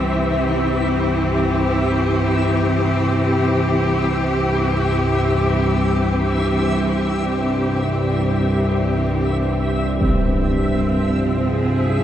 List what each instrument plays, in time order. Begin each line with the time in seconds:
Already playing: synth drone C2 G2, cello section E3 C4 G4, synth texture E5
10.01 cello section C4, synth texture E5, impact
10.71 cello section F3
11.47 cello section G#4
11.93 cello section C#4